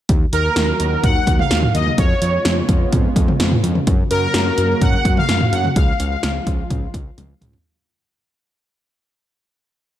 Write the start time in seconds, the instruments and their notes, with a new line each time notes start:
0.09 analog synth bass D#2, analog synth pad D#3 F#3 A#3 F#4, kick, closed hi-hat
0.33 analog synth bass D#2, analog polysynth A#4, closed hi-hat
0.56 analog synth bass D#2, snare, closed hi-hat
0.80 analog synth bass D#2, closed hi-hat
1.04 analog synth bass D#2, analog polysynth F#5, kick, closed hi-hat, mid tom
1.27 analog synth bass D#2, kick, closed hi-hat
1.39 analog polysynth F5, mid tom
1.51 analog synth bass D#2, snare, closed hi-hat
1.63 mid tom
1.74 analog synth bass D#2, analog polysynth D#5, closed hi-hat
1.86 mid tom
1.98 analog synth bass F2, analog synth pad C#3 G#3 B3 F4, analog polysynth C#5, kick, closed hi-hat
2.22 analog synth bass F2, closed hi-hat
2.45 analog synth bass F2, snare, closed hi-hat
2.69 analog synth bass F2, kick, closed hi-hat
2.92 analog synth bass F2, kick, closed hi-hat, mid tom
3.16 analog synth bass F2, kick, closed hi-hat
3.28 mid tom
3.40 analog synth bass F2, snare, closed hi-hat
3.52 mid tom
3.63 analog synth bass F2, closed hi-hat
3.75 mid tom
3.87 analog synth bass F#2, analog synth pad F#3 A#3 F#4, kick, closed hi-hat
4.11 analog synth bass F#2, analog polysynth A#4, closed hi-hat
4.34 analog synth bass F#2, snare, closed hi-hat
4.58 analog synth bass F#2, closed hi-hat
4.81 analog synth bass F#2, analog polysynth F#5, kick, closed hi-hat, mid tom
5.05 analog synth bass F#2, kick, closed hi-hat
5.17 analog polysynth F5, mid tom
5.29 analog synth bass F#2, snare, closed hi-hat
5.41 mid tom
5.52 analog synth bass F#2, analog polysynth F#5, closed hi-hat
5.64 mid tom
5.76 analog synth bass C#2, analog synth pad F3 G#3 F4, analog polysynth F5, kick, closed hi-hat
6.00 analog synth bass C#2, closed hi-hat
6.23 analog synth bass C#2, snare, closed hi-hat
6.47 analog synth bass C#2, kick, closed hi-hat
6.70 analog synth bass C#2, kick, closed hi-hat, mid tom
6.94 analog synth bass C#2, kick, closed hi-hat
7.18 analog synth bass C#2, closed hi-hat, high tom
7.41 analog synth bass C#2, closed hi-hat, mid tom
7.53 floor tom